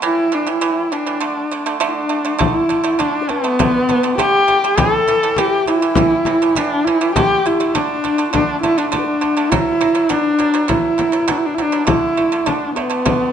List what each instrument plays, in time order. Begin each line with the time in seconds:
0.02 pipa A2 E3, horsehead fiddle E4
0.32 pipa A2 E3, horsehead fiddle D4
0.47 pipa A2 E3, horsehead fiddle E4
0.61 pipa A2 E3
0.92 pipa A2 E3, horsehead fiddle D4
1.06 pipa A2 E3
1.20 pipa D3 A3
1.51 pipa D3 A3
1.66 pipa D3 A3
1.80 pipa D3 A3, xiao D4, horsehead fiddle D4
1.88 xiao E4
1.94 xiao D4
2.09 pipa D3 A3
2.25 pipa D3 A3, xiao D4
2.39 pipa D3 A3, xiao E4, horsehead fiddle E4, frame drum
2.69 pipa D3 A3, frame drum
2.84 pipa D3 A3, xiao E4
2.99 pipa D3 A3, horsehead fiddle D4, xiao D4, frame drum
3.22 xiao D5
3.29 pipa D3 A3, horsehead fiddle B3, xiao B4, frame drum
3.44 pipa D3 A3
3.59 pipa D3 A3, frame drum
3.89 pipa D3 A3, frame drum
4.03 pipa D3 A3
4.18 pipa D3 A3, horsehead fiddle G4, xiao G4, frame drum
4.48 pipa D3 A3, frame drum
4.62 pipa D3 A3, xiao G4
4.77 pipa A2 E3, horsehead fiddle A4, xiao A4, frame drum
5.07 pipa A2 E3, frame drum
5.22 pipa A2 E3, xiao A4
5.37 pipa A2 E3, xiao G4, horsehead fiddle G4, frame drum
5.66 pipa A2 E3, xiao E4, horsehead fiddle E4, frame drum
5.82 pipa A2 E3
5.95 pipa A2 E3, frame drum
6.25 pipa A2 E3, xiao E4, frame drum
6.42 pipa A2 E3
6.56 pipa A2 E3, horsehead fiddle D4, xiao E4, frame drum
6.61 xiao D4
6.85 pipa A2 E3, horsehead fiddle E4, xiao E4, frame drum
7.01 pipa A2 E3
7.14 pipa D3 A3, xiao G4, horsehead fiddle G4, frame drum
7.46 pipa D3 A3, horsehead fiddle E4, frame drum
7.60 pipa D3 A3
7.74 pipa D3 A3, horsehead fiddle D4, xiao D4, frame drum
8.04 pipa D3 A3, frame drum
8.18 pipa D3 A3
8.28 xiao E4
8.33 pipa D3 A3, horsehead fiddle D4, xiao D4, frame drum
8.62 pipa D3 A3, horsehead fiddle E4, frame drum
8.77 pipa D3 A3, horsehead fiddle D4
8.91 pipa D3 A3, horsehead fiddle D4, xiao D4, frame drum
8.99 xiao B4
9.05 xiao D4
9.21 pipa D3 A3, frame drum
9.37 pipa D3 A3
9.50 pipa B2 F#3, horsehead fiddle E4, xiao E4, frame drum
9.81 pipa B2 F#3, frame drum
9.95 pipa B2 F#3
10.09 pipa B2 F#3, horsehead fiddle D4, xiao D4, frame drum
10.39 pipa B2 F#3, frame drum
10.54 pipa B2 F#3
10.68 pipa B2 F#3, horsehead fiddle E4, xiao E4, frame drum
10.98 pipa B2 F#3, frame drum
11.12 pipa B2 F#3
11.28 pipa B2 F#3, horsehead fiddle D4, frame drum
11.38 horsehead fiddle E4
11.46 horsehead fiddle D4
11.55 pipa B2, horsehead fiddle E4, frame drum
11.59 pipa F#3, horsehead fiddle D4, xiao E4
11.65 xiao D4
11.72 pipa B2 F#3
11.87 pipa D3 A3, horsehead fiddle E4, xiao G4, frame drum
11.92 xiao E4
12.17 pipa D3 A3
12.32 pipa D3 A3, xiao E4
12.46 pipa D3 A3, horsehead fiddle D4, xiao D4, frame drum
12.76 pipa D3 A3, horsehead fiddle B3, xiao D5, frame drum
12.81 xiao B4
12.90 pipa D3 A3
13.05 pipa D3 A3, frame drum